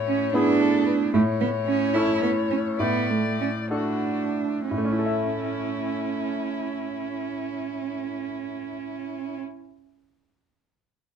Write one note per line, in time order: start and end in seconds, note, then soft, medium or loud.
0.00 0.31 A2 soft
0.00 0.35 C#5 medium
0.08 0.33 C#4 medium
0.34 1.10 B3 soft
0.34 1.12 D4 medium
0.34 1.10 E4 soft
0.34 1.10 G#4 soft
0.34 0.62 B4 soft
0.61 0.86 A4 medium
0.86 0.94 B4 soft
1.13 1.92 A2 soft
1.13 1.22 A3 medium
1.13 2.80 C#5 medium
1.41 1.49 B3 medium
1.67 1.96 C#4 medium
1.94 2.75 C#4 soft
1.94 2.22 E4 medium
1.94 2.76 E4 soft
1.94 2.76 A4 soft
2.23 2.31 B3 medium
2.51 2.59 C#4 medium
2.79 3.68 A2 soft
2.79 3.12 B3 medium
2.79 3.71 D5 medium
3.10 3.40 A3 medium
3.41 3.49 C#4 soft
3.70 4.67 D4 soft
3.70 4.70 D4 soft
3.70 4.67 F#4 soft
3.70 4.19 F#4 soft
3.70 4.67 A4 soft
4.71 9.39 A2 soft
4.71 9.40 C#4 soft
4.71 9.40 E4 soft
4.78 9.46 A3 soft
4.85 9.53 C#4 soft
4.92 9.60 E4 soft
4.99 9.67 A4 soft
5.06 9.74 E5 soft